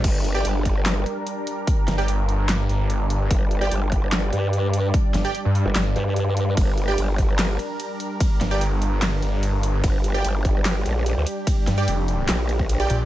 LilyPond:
<<
  \new Staff \with { instrumentName = "Supersaw synth" } { \time 4/4 \key g \minor \tempo 4 = 147 r8. <g' d'' g''>16 r2. | r8. <g' d'' g''>16 r2. | r8. <g' d'' g''>16 r2. | r8. <g' d'' g''>16 r2. |
r8. <g' d'' g''>16 r2. | r8. <g' d'' g''>16 r2. | r8. <g' d'' g''>16 r2. | r8. <g' d'' g''>16 r2 r16 <g' d'' g''>8 r16 | }
  \new Staff \with { instrumentName = "Supersaw synth" } { \time 4/4 \key g \minor << { bes'1~ | bes'1 | d''1~ | d''1 |
bes'1~ | bes'1 | g'1~ | g'1 | } \\ { <g d'>1~ | <g d'>1~ | <g d'>1~ | <g d'>1~ |
<g d'>1~ | <g d'>1~ | <g d'>1~ | <g d'>1 | } >> }
  \new Staff \with { instrumentName = "Detuned saw bass" } { \clef bass \time 4/4 \key g \minor r1 | r8 g,,2 g,,4. | r1 | r8 g,,16 r8 g,8 r16 g,,8 r4. |
r1 | r8 g,,2 g,,4. | r1 | r8 g,8 f,,4 r4. bes,,8 | }
  \new Staff \with { instrumentName = "Wobble bass" } { \clef bass \time 4/4 \key g \minor g,,4 g,,4. r4. | r1 | g,,4 g,,4. g,4. | r4. r16 g,,16 r8 g,4. |
g,,4 g,,4. r4. | r1 | g,,4 g,,4. bes,,8. d,16 r8 | r2 bes,,4. r8 | }
  \new DrumStaff \with { instrumentName = "Drums" } \drummode { \time 4/4 <cymc hh bd>8 hh16 hh16 hh8 <hh bd>8 <hc hh sn>8 hh8 hh8 hh8 | <hh bd>8 <hh sn>16 hh16 hh8 hh8 <hc hh sn>8 hh8 hh8 hh8 | <hh bd>8 hh16 hh16 hh8 <hh bd>8 <hc hh sn>8 hh8 hh8 hh8 | <hh bd>8 <hh sn>16 hh16 hh8 hh8 <hc hh sn>8 hh8 hh8 hh8 |
<hh bd cymr>8 hh16 hh16 <hh cymr>8 <hh bd>8 <hc hh cymr sn>8 hh8 <hh cymr>8 hh8 | <hh bd cymr>8 <hh sn>16 hh16 <hh cymr>8 hh8 <hc hh cymr sn>8 hh8 <hh cymr>8 hh8 | <hh bd cymr>8 hh16 hh16 <hh cymr>8 <hh bd>8 <hc hh cymr sn>8 hh8 <hh cymr>8 hh8 | <hh bd cymr>8 <hh sn>16 hh16 <hh cymr>8 hh8 <hc hh cymr sn>8 hh16 bd16 <hh cymr>16 hh16 hh8 | }
>>